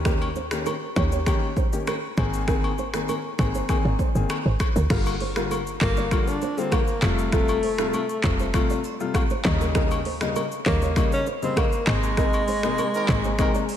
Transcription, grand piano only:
0.05 D#3 A#3 C#4 G4
0.51 D#3 A#3 C#4 G4
0.96 D#3 A#3 C#4 G4
1.26 D#3 A#3 C#4 G4
1.72 D#3 A#3 C#4 G4
2.17 D#3 A#3 C4 G#4
2.47 D#3 A#3 C4 G#4
2.94 D#3 A#3 C4 G#4
3.39 D#3 A#3 C4 G#4
3.69 D#3 A#3 C4 G#4
4.15 D#3 A#3 C4 G#4
4.90 D3 G3 A#3 F4
5.36 D3 G3 A#3 F4
5.81 D3 G3 A#3 F4
6.11 D3 G3 A#3 F4
6.57 D3 G3 A#3 F4
7.02 C3 G3 A3 F4
7.32 C3 G3 A3 F4
7.79 C3 G3 A3 F4
8.23 C3 G3 A3 F4
8.54 C3 G3 A3 F4
9.00 C3 G3 A3 F4
9.45 C#3 G3 A#3 D#4
9.75 C#3 G3 A#3 D#4
10.21 C#3 G3 A#3 D#4
10.66 C#3 G3 A#3 D#4
10.96 C#3 G3 A#3 D#4
11.42 C#3 G3 A#3 D#4
11.87 C3 G#3 A#3 D#4
12.17 C3 G#3 A#3 D#4
12.63 C3 G#3 A#3 D#4
13.08 C3 G#3 A#3 D#4
13.39 C3 G#3 A#3 D#4

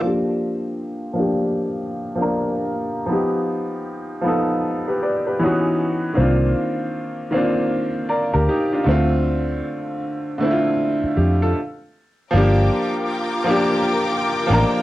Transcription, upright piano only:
Already playing: F4 A4
0.01 F3 A#3
0.05 D4 G4
1.13 F3 A#3
1.17 D4 G4
2.15 F3 A#3
2.20 D4 A#4
3.06 F3 B3
3.11 D#4 G4
4.21 F3 B3
4.26 D#4 A4
4.88 G4 B4
5.03 B4 D5
5.27 G4 B4
5.39 E3 B3 C#4
5.45 D#4 F#4
6.14 D#3 A#3 C4
6.19 D4 F4
7.31 D#3 A#3 C4
7.36 D4 F4
8.09 A#4 D5
8.33 G4 A#4
8.49 D#4 G4
8.73 D4 F4
8.84 D3 A3
8.88 C4 F4
10.38 D3 A3
10.43 C4 E4
10.51 F4
11.17 G4
11.42 F4 A4
12.31 F3 A#3
12.35 D4 G4
13.44 F3 A#3
13.48 D4 G4
14.47 F3 A#3
14.51 D4 A#4

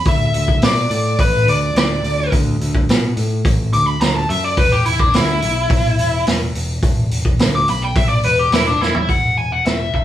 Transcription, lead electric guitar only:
0.08 E5
0.64 D5
1.20 B4
1.49 D5
1.78 D5
3.73 D6
3.87 B5
4.01 A#5
4.15 A5
4.29 E5
4.44 D5
4.58 B4
4.73 G4
4.85 E4
5.00 D4
5.15 E4
7.55 D6
7.70 B5
7.82 G5
7.96 E5
8.09 D5
8.24 B4
8.39 G4
8.53 E4
8.67 D4
8.81 E4
9.09 F#5
9.38 G#5
9.52 F#5
9.66 E5
9.95 E5

